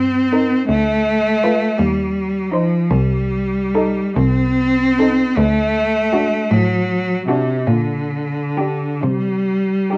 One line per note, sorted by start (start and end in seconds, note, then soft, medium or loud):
0.00 0.49 G2 medium
0.00 0.68 C4 medium
0.33 0.60 D#4 medium
0.33 0.60 A#4 medium
0.68 1.59 D2 medium
0.68 1.80 A3 loud
1.43 1.70 F4 medium
1.43 1.71 B4 medium
1.79 2.69 D#2 medium
1.79 2.53 G3 medium
2.51 2.93 F3 medium
2.51 2.80 D#4 medium
2.51 2.82 C5 medium
2.91 3.94 C2 medium
2.91 4.19 G3 medium
3.75 4.06 D#4 medium
3.75 4.07 A4 medium
4.17 5.16 C2 medium
4.17 5.39 C4 medium
4.99 5.28 D#4 medium
4.99 5.28 A4 medium
5.37 6.29 D2 medium
5.37 6.52 A3 medium
6.13 6.41 D4 medium
6.13 6.41 F#4 medium
6.51 7.45 A2 medium
6.51 7.27 F#3 medium
7.27 7.69 C3 medium
7.27 7.57 D4 medium
7.27 7.57 F#4 medium
7.67 8.79 A#2 medium
7.67 9.05 D3 medium
8.57 8.92 D4 medium
8.57 8.92 G4 medium
9.03 9.97 C3 medium
9.03 9.97 G3 medium
9.91 9.97 D#4 soft
9.91 9.97 G4 soft